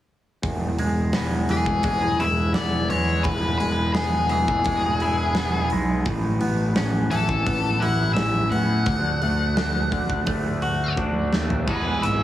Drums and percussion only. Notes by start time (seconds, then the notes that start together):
0.43 kick, open hi-hat
0.79 open hi-hat
1.13 snare, open hi-hat
1.49 open hi-hat
1.66 kick
1.83 kick, open hi-hat
2.20 open hi-hat
2.54 snare, open hi-hat
2.90 open hi-hat
3.24 kick, open hi-hat
3.60 open hi-hat
3.95 snare, open hi-hat
4.29 open hi-hat
4.48 kick
4.64 kick, open hi-hat
5.00 open hi-hat
5.35 snare, open hi-hat
5.70 open hi-hat
6.05 kick, open hi-hat
6.41 open hi-hat
6.76 snare, open hi-hat
7.11 open hi-hat
7.29 kick
7.47 kick, open hi-hat
7.82 open hi-hat
8.17 snare, open hi-hat
8.52 open hi-hat
8.86 kick, open hi-hat
9.22 open hi-hat
9.57 snare, open hi-hat
9.92 kick, open hi-hat
10.10 kick
10.27 kick, open hi-hat
10.62 open hi-hat
10.97 kick
11.33 snare
11.50 floor tom
11.67 kick, crash
12.03 closed hi-hat